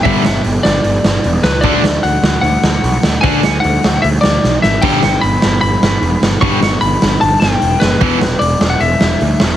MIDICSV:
0, 0, Header, 1, 5, 480
1, 0, Start_track
1, 0, Tempo, 398142
1, 71, Time_signature, 4, 2, 24, 8
1, 11536, End_track
2, 0, Start_track
2, 0, Title_t, "Lead electric guitar"
2, 0, Program_c, 0, 29
2, 38, Note_on_c, 0, 76, 93
2, 500, Note_off_c, 0, 76, 0
2, 762, Note_on_c, 0, 74, 90
2, 1729, Note_on_c, 0, 71, 77
2, 1767, Note_off_c, 0, 74, 0
2, 1940, Note_on_c, 0, 74, 89
2, 1988, Note_off_c, 0, 71, 0
2, 2447, Note_on_c, 0, 78, 90
2, 2462, Note_off_c, 0, 74, 0
2, 2896, Note_off_c, 0, 78, 0
2, 2910, Note_on_c, 0, 78, 96
2, 3866, Note_off_c, 0, 78, 0
2, 3870, Note_on_c, 0, 80, 95
2, 4336, Note_off_c, 0, 80, 0
2, 4342, Note_on_c, 0, 78, 83
2, 4846, Note_on_c, 0, 76, 92
2, 4862, Note_off_c, 0, 78, 0
2, 4914, Note_off_c, 0, 76, 0
2, 5074, Note_on_c, 0, 74, 96
2, 5569, Note_off_c, 0, 74, 0
2, 5574, Note_on_c, 0, 76, 91
2, 5805, Note_on_c, 0, 79, 97
2, 5830, Note_off_c, 0, 76, 0
2, 6286, Note_on_c, 0, 83, 87
2, 6313, Note_off_c, 0, 79, 0
2, 6744, Note_off_c, 0, 83, 0
2, 6765, Note_on_c, 0, 83, 102
2, 7689, Note_off_c, 0, 83, 0
2, 7729, Note_on_c, 0, 85, 109
2, 8204, Note_off_c, 0, 85, 0
2, 8209, Note_on_c, 0, 83, 94
2, 8665, Note_off_c, 0, 83, 0
2, 8691, Note_on_c, 0, 81, 100
2, 8918, Note_on_c, 0, 79, 107
2, 8922, Note_off_c, 0, 81, 0
2, 9379, Note_off_c, 0, 79, 0
2, 9403, Note_on_c, 0, 71, 101
2, 10115, Note_on_c, 0, 74, 85
2, 10157, Note_off_c, 0, 71, 0
2, 10465, Note_off_c, 0, 74, 0
2, 10485, Note_on_c, 0, 78, 83
2, 10616, Note_on_c, 0, 76, 85
2, 10620, Note_off_c, 0, 78, 0
2, 11536, Note_off_c, 0, 76, 0
2, 11536, End_track
3, 0, Start_track
3, 0, Title_t, "Overdriven electric guitar"
3, 0, Program_c, 1, 29
3, 65, Note_on_c, 1, 43, 98
3, 71, Note_on_c, 1, 50, 98
3, 76, Note_on_c, 1, 55, 105
3, 260, Note_off_c, 1, 43, 0
3, 263, Note_off_c, 1, 50, 0
3, 266, Note_off_c, 1, 55, 0
3, 1981, Note_on_c, 1, 50, 91
3, 1986, Note_on_c, 1, 57, 100
3, 1993, Note_on_c, 1, 62, 92
3, 2179, Note_off_c, 1, 50, 0
3, 2181, Note_off_c, 1, 57, 0
3, 2185, Note_off_c, 1, 62, 0
3, 3901, Note_on_c, 1, 50, 91
3, 3910, Note_on_c, 1, 57, 103
3, 3914, Note_on_c, 1, 62, 106
3, 4099, Note_off_c, 1, 50, 0
3, 4103, Note_off_c, 1, 57, 0
3, 4105, Note_off_c, 1, 62, 0
3, 5828, Note_on_c, 1, 43, 91
3, 5836, Note_on_c, 1, 50, 91
3, 5838, Note_on_c, 1, 55, 96
3, 6021, Note_off_c, 1, 43, 0
3, 6026, Note_off_c, 1, 50, 0
3, 6027, Note_off_c, 1, 55, 0
3, 7750, Note_on_c, 1, 43, 93
3, 7758, Note_on_c, 1, 50, 98
3, 7760, Note_on_c, 1, 55, 112
3, 7942, Note_off_c, 1, 43, 0
3, 7946, Note_off_c, 1, 50, 0
3, 7947, Note_off_c, 1, 55, 0
3, 9659, Note_on_c, 1, 40, 102
3, 9672, Note_on_c, 1, 47, 99
3, 9677, Note_on_c, 1, 52, 108
3, 9856, Note_off_c, 1, 40, 0
3, 9862, Note_off_c, 1, 47, 0
3, 9865, Note_off_c, 1, 52, 0
3, 11536, End_track
4, 0, Start_track
4, 0, Title_t, "Picked electric bass"
4, 0, Program_c, 2, 34
4, 60, Note_on_c, 2, 31, 97
4, 215, Note_off_c, 2, 31, 0
4, 320, Note_on_c, 2, 31, 84
4, 469, Note_off_c, 2, 31, 0
4, 546, Note_on_c, 2, 31, 94
4, 699, Note_off_c, 2, 31, 0
4, 790, Note_on_c, 2, 31, 89
4, 942, Note_off_c, 2, 31, 0
4, 1023, Note_on_c, 2, 31, 87
4, 1177, Note_off_c, 2, 31, 0
4, 1259, Note_on_c, 2, 31, 87
4, 1415, Note_off_c, 2, 31, 0
4, 1508, Note_on_c, 2, 28, 90
4, 1661, Note_off_c, 2, 28, 0
4, 1739, Note_on_c, 2, 37, 93
4, 1975, Note_off_c, 2, 37, 0
4, 1975, Note_on_c, 2, 38, 96
4, 2132, Note_off_c, 2, 38, 0
4, 2213, Note_on_c, 2, 38, 93
4, 2370, Note_off_c, 2, 38, 0
4, 2454, Note_on_c, 2, 38, 92
4, 2611, Note_off_c, 2, 38, 0
4, 2687, Note_on_c, 2, 38, 88
4, 2847, Note_off_c, 2, 38, 0
4, 2927, Note_on_c, 2, 38, 89
4, 3086, Note_off_c, 2, 38, 0
4, 3177, Note_on_c, 2, 38, 83
4, 3333, Note_off_c, 2, 38, 0
4, 3418, Note_on_c, 2, 35, 94
4, 3574, Note_off_c, 2, 35, 0
4, 3665, Note_on_c, 2, 38, 89
4, 3819, Note_off_c, 2, 38, 0
4, 3903, Note_on_c, 2, 38, 90
4, 4057, Note_off_c, 2, 38, 0
4, 4156, Note_on_c, 2, 38, 93
4, 4306, Note_off_c, 2, 38, 0
4, 4397, Note_on_c, 2, 38, 100
4, 4547, Note_off_c, 2, 38, 0
4, 4636, Note_on_c, 2, 38, 85
4, 4786, Note_off_c, 2, 38, 0
4, 4876, Note_on_c, 2, 38, 85
4, 5026, Note_off_c, 2, 38, 0
4, 5117, Note_on_c, 2, 38, 88
4, 5267, Note_off_c, 2, 38, 0
4, 5358, Note_on_c, 2, 35, 88
4, 5507, Note_off_c, 2, 35, 0
4, 5599, Note_on_c, 2, 32, 89
4, 5748, Note_off_c, 2, 32, 0
4, 5821, Note_on_c, 2, 31, 94
4, 5976, Note_off_c, 2, 31, 0
4, 6075, Note_on_c, 2, 31, 91
4, 6225, Note_off_c, 2, 31, 0
4, 6310, Note_on_c, 2, 31, 98
4, 6462, Note_off_c, 2, 31, 0
4, 6565, Note_on_c, 2, 31, 93
4, 6712, Note_off_c, 2, 31, 0
4, 6786, Note_on_c, 2, 31, 84
4, 6939, Note_off_c, 2, 31, 0
4, 7022, Note_on_c, 2, 31, 89
4, 7176, Note_off_c, 2, 31, 0
4, 7255, Note_on_c, 2, 28, 99
4, 7411, Note_off_c, 2, 28, 0
4, 7506, Note_on_c, 2, 31, 85
4, 7658, Note_off_c, 2, 31, 0
4, 7741, Note_on_c, 2, 31, 96
4, 7895, Note_off_c, 2, 31, 0
4, 7985, Note_on_c, 2, 31, 93
4, 8138, Note_off_c, 2, 31, 0
4, 8227, Note_on_c, 2, 31, 95
4, 8379, Note_off_c, 2, 31, 0
4, 8473, Note_on_c, 2, 31, 94
4, 8623, Note_off_c, 2, 31, 0
4, 8713, Note_on_c, 2, 31, 87
4, 8863, Note_off_c, 2, 31, 0
4, 8947, Note_on_c, 2, 31, 94
4, 9098, Note_off_c, 2, 31, 0
4, 9194, Note_on_c, 2, 28, 96
4, 9344, Note_off_c, 2, 28, 0
4, 9430, Note_on_c, 2, 30, 96
4, 9581, Note_off_c, 2, 30, 0
4, 9661, Note_on_c, 2, 28, 95
4, 9815, Note_off_c, 2, 28, 0
4, 9901, Note_on_c, 2, 28, 96
4, 10054, Note_off_c, 2, 28, 0
4, 10141, Note_on_c, 2, 28, 100
4, 10294, Note_off_c, 2, 28, 0
4, 10381, Note_on_c, 2, 28, 88
4, 10535, Note_off_c, 2, 28, 0
4, 10621, Note_on_c, 2, 28, 87
4, 10774, Note_off_c, 2, 28, 0
4, 10866, Note_on_c, 2, 28, 92
4, 11017, Note_off_c, 2, 28, 0
4, 11112, Note_on_c, 2, 38, 97
4, 11262, Note_off_c, 2, 38, 0
4, 11348, Note_on_c, 2, 28, 95
4, 11499, Note_off_c, 2, 28, 0
4, 11536, End_track
5, 0, Start_track
5, 0, Title_t, "Drums"
5, 64, Note_on_c, 9, 46, 67
5, 65, Note_on_c, 9, 36, 116
5, 185, Note_off_c, 9, 46, 0
5, 186, Note_off_c, 9, 36, 0
5, 297, Note_on_c, 9, 38, 121
5, 418, Note_off_c, 9, 38, 0
5, 535, Note_on_c, 9, 46, 60
5, 655, Note_off_c, 9, 46, 0
5, 782, Note_on_c, 9, 38, 114
5, 903, Note_off_c, 9, 38, 0
5, 1015, Note_on_c, 9, 46, 60
5, 1136, Note_off_c, 9, 46, 0
5, 1259, Note_on_c, 9, 38, 109
5, 1380, Note_off_c, 9, 38, 0
5, 1494, Note_on_c, 9, 46, 52
5, 1614, Note_off_c, 9, 46, 0
5, 1733, Note_on_c, 9, 38, 115
5, 1854, Note_off_c, 9, 38, 0
5, 1957, Note_on_c, 9, 46, 54
5, 1973, Note_on_c, 9, 36, 114
5, 2078, Note_off_c, 9, 46, 0
5, 2094, Note_off_c, 9, 36, 0
5, 2219, Note_on_c, 9, 38, 108
5, 2340, Note_off_c, 9, 38, 0
5, 2452, Note_on_c, 9, 46, 57
5, 2572, Note_off_c, 9, 46, 0
5, 2696, Note_on_c, 9, 38, 109
5, 2817, Note_off_c, 9, 38, 0
5, 2936, Note_on_c, 9, 46, 59
5, 3057, Note_off_c, 9, 46, 0
5, 3177, Note_on_c, 9, 38, 112
5, 3298, Note_off_c, 9, 38, 0
5, 3423, Note_on_c, 9, 46, 60
5, 3544, Note_off_c, 9, 46, 0
5, 3658, Note_on_c, 9, 38, 111
5, 3778, Note_off_c, 9, 38, 0
5, 3898, Note_on_c, 9, 46, 68
5, 3903, Note_on_c, 9, 36, 113
5, 4019, Note_off_c, 9, 46, 0
5, 4023, Note_off_c, 9, 36, 0
5, 4138, Note_on_c, 9, 38, 110
5, 4259, Note_off_c, 9, 38, 0
5, 4385, Note_on_c, 9, 46, 60
5, 4506, Note_off_c, 9, 46, 0
5, 4634, Note_on_c, 9, 38, 110
5, 4754, Note_off_c, 9, 38, 0
5, 4870, Note_on_c, 9, 46, 64
5, 4991, Note_off_c, 9, 46, 0
5, 5106, Note_on_c, 9, 38, 106
5, 5226, Note_off_c, 9, 38, 0
5, 5349, Note_on_c, 9, 38, 65
5, 5470, Note_off_c, 9, 38, 0
5, 5586, Note_on_c, 9, 38, 94
5, 5707, Note_off_c, 9, 38, 0
5, 5813, Note_on_c, 9, 46, 63
5, 5813, Note_on_c, 9, 49, 96
5, 5823, Note_on_c, 9, 36, 117
5, 5934, Note_off_c, 9, 46, 0
5, 5934, Note_off_c, 9, 49, 0
5, 5944, Note_off_c, 9, 36, 0
5, 6060, Note_on_c, 9, 38, 116
5, 6181, Note_off_c, 9, 38, 0
5, 6303, Note_on_c, 9, 46, 59
5, 6424, Note_off_c, 9, 46, 0
5, 6538, Note_on_c, 9, 38, 112
5, 6659, Note_off_c, 9, 38, 0
5, 6782, Note_on_c, 9, 46, 54
5, 6902, Note_off_c, 9, 46, 0
5, 7028, Note_on_c, 9, 38, 104
5, 7149, Note_off_c, 9, 38, 0
5, 7264, Note_on_c, 9, 46, 55
5, 7385, Note_off_c, 9, 46, 0
5, 7510, Note_on_c, 9, 38, 113
5, 7631, Note_off_c, 9, 38, 0
5, 7744, Note_on_c, 9, 36, 111
5, 7747, Note_on_c, 9, 46, 61
5, 7865, Note_off_c, 9, 36, 0
5, 7867, Note_off_c, 9, 46, 0
5, 7987, Note_on_c, 9, 38, 124
5, 8108, Note_off_c, 9, 38, 0
5, 8218, Note_on_c, 9, 46, 65
5, 8339, Note_off_c, 9, 46, 0
5, 8465, Note_on_c, 9, 38, 115
5, 8585, Note_off_c, 9, 38, 0
5, 8706, Note_on_c, 9, 46, 59
5, 8826, Note_off_c, 9, 46, 0
5, 8947, Note_on_c, 9, 38, 111
5, 9067, Note_off_c, 9, 38, 0
5, 9183, Note_on_c, 9, 46, 60
5, 9304, Note_off_c, 9, 46, 0
5, 9422, Note_on_c, 9, 38, 114
5, 9543, Note_off_c, 9, 38, 0
5, 9654, Note_on_c, 9, 46, 66
5, 9662, Note_on_c, 9, 36, 118
5, 9774, Note_off_c, 9, 46, 0
5, 9783, Note_off_c, 9, 36, 0
5, 9903, Note_on_c, 9, 38, 118
5, 10024, Note_off_c, 9, 38, 0
5, 10144, Note_on_c, 9, 46, 61
5, 10264, Note_off_c, 9, 46, 0
5, 10380, Note_on_c, 9, 38, 115
5, 10501, Note_off_c, 9, 38, 0
5, 10614, Note_on_c, 9, 46, 57
5, 10734, Note_off_c, 9, 46, 0
5, 10859, Note_on_c, 9, 38, 115
5, 10979, Note_off_c, 9, 38, 0
5, 11097, Note_on_c, 9, 46, 54
5, 11218, Note_off_c, 9, 46, 0
5, 11331, Note_on_c, 9, 38, 116
5, 11452, Note_off_c, 9, 38, 0
5, 11536, End_track
0, 0, End_of_file